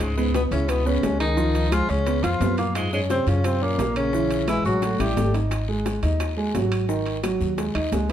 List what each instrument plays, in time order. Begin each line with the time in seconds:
0.00 upright bass C#2, trombone G#2, tenor saxophone G#3, high bongo, high timbale, long guiro, claves, maracas
0.17 trombone G#2, tenor saxophone G#3, grand piano B3 B4, high bongo, maracas
0.34 trombone B2, tenor saxophone B3, high bongo, high timbale, low timbale, short guiro, maracas
0.51 upright bass C#2, trombone C#3, tenor saxophone C#4, grand piano E4 E5, high timbale, short guiro, maracas
0.68 trombone B2, tenor saxophone B3, high bongo, high timbale, long guiro, claves, maracas
0.86 trombone C#3, grand piano B3 B4, tenor saxophone C#4, high bongo, maracas
1.03 upright bass C#2, grand piano G#3 G#4, high bongo, low bongo, high timbale, low timbale, short guiro, maracas
1.20 trombone D#3, tenor saxophone D#4, high bongo, high timbale, short guiro, claves, maracas
1.37 grand piano F3 F4, high bongo, long guiro, maracas
1.55 high bongo, high timbale, maracas
1.72 trombone F3, grand piano G#3 G#4, tenor saxophone F4, high bongo, high timbale, low timbale, short guiro, claves, maracas
1.89 upright bass C#2, trombone C#3, tenor saxophone C#4, short guiro, maracas
2.06 grand piano B3 B4, high bongo, high timbale, long guiro, maracas
2.23 upright bass F2, trombone F3, tenor saxophone F4, grand piano F4 F5, high bongo, high timbale, claves, maracas
2.40 upright bass F#2, grand piano B3 B4, high bongo, low bongo, high timbale, low timbale, short guiro, maracas
2.58 trombone A#2, tenor saxophone A#3, grand piano F4 F5, high bongo, high timbale, short guiro, maracas
2.75 trombone G#2, tenor saxophone G#3, high bongo, high timbale, long guiro, claves, maracas
2.93 trombone G#2, tenor saxophone G#3, grand piano C#4 C#5, high bongo, maracas
3.09 trombone C3, tenor saxophone C4, high bongo, high timbale, low timbale, short guiro, maracas
3.27 upright bass F#2, trombone C#3, tenor saxophone C#4, grand piano F4 F5, high timbale, short guiro, maracas
3.44 trombone C3, tenor saxophone C4, high bongo, high timbale, long guiro, claves, maracas
3.62 trombone A#2, tenor saxophone A#3, grand piano C#4 C#5, high bongo
3.78 upright bass A#1, grand piano A#3 A#4, high bongo, low bongo, high timbale, low timbale, short guiro, maracas
3.96 trombone C#3, tenor saxophone C#4, high bongo, high timbale, short guiro, claves, maracas
4.13 grand piano E3 E4, high bongo, long guiro, maracas
4.30 high bongo, high timbale, maracas
4.47 trombone E3, grand piano G#3 G#4, tenor saxophone E4, high bongo, high timbale, low timbale, short guiro, claves, maracas
4.65 upright bass A1, trombone F#3, tenor saxophone F#4, short guiro, maracas
4.82 grand piano A3 A4, high bongo, high timbale, long guiro, maracas
4.99 upright bass A1, trombone G3, grand piano E4 E5, tenor saxophone G4, low bongo, high timbale, claves, maracas
5.16 upright bass G#1, grand piano A3 A4, low bongo, high timbale, low timbale, short guiro, maracas
5.34 grand piano D#4 D#5, low bongo, high timbale, short guiro, maracas
5.51 high bongo, high timbale, long guiro, claves, maracas
5.68 grand piano G#3 G#4, high bongo
5.86 high bongo, high timbale, low timbale, short guiro, maracas
6.03 upright bass D#2, grand piano D#4 D#5, high timbale, short guiro, maracas
6.20 high bongo, high timbale, long guiro, claves, maracas
6.37 grand piano G#3 G#4, high bongo
6.54 upright bass G#1, grand piano F#3 F#4, high bongo, low bongo, high timbale, low timbale, short guiro, maracas
6.72 high bongo, high timbale, short guiro, claves, maracas
6.89 grand piano D#3 D#4, high bongo, long guiro, maracas
7.06 high bongo, high timbale
7.23 grand piano F#3 F#4, high bongo, high timbale, low timbale, short guiro, claves, maracas
7.40 upright bass D#2, short guiro, maracas
7.58 grand piano G#3 G#4, high bongo, high timbale, long guiro, maracas
7.75 upright bass D#2, grand piano D#4 D#5, high bongo, high timbale, claves
7.92 upright bass C#2, grand piano G#3 G#4, high bongo, low bongo, high timbale, low timbale, short guiro, maracas
8.09 short guiro